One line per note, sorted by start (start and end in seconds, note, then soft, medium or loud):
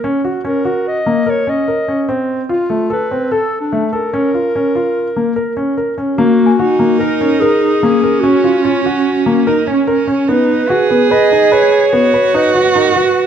0.04 0.20 C#4 medium
0.24 0.40 F#4 medium
0.45 0.60 C#4 medium
0.45 0.89 A#4 medium
0.65 0.96 F#4 medium
0.88 1.31 D#5 medium
1.06 1.22 A#3 medium
1.26 1.42 A#4 medium
1.26 1.51 C#5 medium
1.47 1.63 C#4 medium
1.47 2.10 D#5 medium
1.68 1.84 A#4 medium
1.88 2.04 C#4 medium
2.09 2.40 C4 medium
2.49 2.65 F4 medium
2.49 2.94 F4 medium
2.70 2.86 A3 medium
2.90 3.06 A4 medium
2.90 3.34 B4 medium
3.11 3.27 C4 medium
3.31 3.63 A4 medium
3.31 3.60 A4 medium
3.61 3.86 D4 medium
3.72 3.88 A3 medium
3.93 4.09 A4 medium
3.93 5.75 A#4 medium
4.13 4.29 C#4 medium
4.34 4.50 F4 medium
4.55 4.71 C#4 medium
4.75 5.07 F4 medium
5.16 5.32 A#3 medium
5.36 5.52 A#4 medium
5.57 5.73 C#4 medium
5.77 5.93 A#4 medium
5.98 6.14 C#4 medium
6.17 6.50 A#3 medium
6.17 6.57 A#3 medium
6.17 6.96 F#4 medium
6.46 7.17 G#5 soft
6.59 7.85 D#4 medium
6.59 6.75 F#4 medium
6.79 6.95 A#3 medium
6.99 7.42 A#4 medium
6.99 7.16 A#4 medium
7.21 7.37 C#4 medium
7.40 8.22 G#4 medium
7.40 7.73 A#4 medium
7.83 7.98 A#3 medium
7.83 9.49 C#4 loud
8.03 8.19 A#4 medium
8.21 8.39 C#4 medium
8.21 8.65 F#4 medium
8.44 8.60 F4 medium
8.63 8.81 C#4 medium
8.63 8.83 F4 medium
8.83 9.62 F#4 medium
8.83 9.17 F#4 medium
9.26 9.42 A#3 medium
9.47 9.68 D#4 medium
9.47 9.62 A#4 medium
9.67 9.87 C#4 medium
9.67 9.83 C#4 medium
9.87 10.29 C#4 medium
9.87 10.03 A#4 medium
10.07 10.23 C#4 medium
10.28 10.60 B3 medium
10.28 10.71 D#4 medium
10.28 11.13 B4 medium
10.69 10.86 F#4 medium
10.69 11.93 G#4 loud
10.90 11.06 B3 medium
11.11 11.27 B4 medium
11.11 11.54 D#5 medium
11.32 11.48 D#4 medium
11.52 11.83 B4 medium
11.52 12.37 C#5 loud
11.92 12.09 B3 medium
11.92 13.27 F#4 loud
12.14 12.29 B4 medium
12.34 12.50 D#4 medium
12.34 12.79 B4 medium
12.55 12.70 F#4 medium
12.75 12.91 D#4 medium
12.75 12.96 A#4 medium
12.96 13.27 F#4 medium
12.96 13.27 B4 medium